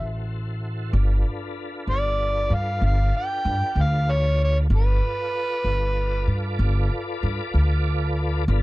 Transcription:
Already playing: tonewheel organ E4 F#4 A4 C5, harmonica E5
0.00 upright bass A1
0.93 upright bass G1, tonewheel organ D4 F4 A4 B4
1.87 upright bass G1, harmonica D5
2.50 upright bass G2
2.54 harmonica F5
2.81 upright bass G1, harmonica F5
3.17 harmonica G5
3.45 upright bass G2
3.76 upright bass D2
3.81 harmonica F5
4.12 harmonica C#5
4.44 harmonica C#5
4.70 upright bass G1, tonewheel organ F4 A4 B4 D5
4.76 harmonica B4
5.64 upright bass G1
6.27 upright bass G2
6.59 upright bass G1
7.23 upright bass G2
7.54 upright bass D2
8.48 upright bass G1, tonewheel organ D4 F4 A4 B4

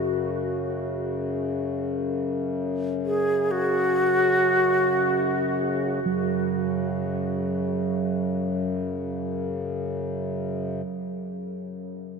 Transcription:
Already playing: harmonium F#2 C#3, xiao F#4
3.06 xiao G#4
3.51 xiao F#4
6.01 harmonium F#2 C#3
6.06 singing bowl F#3

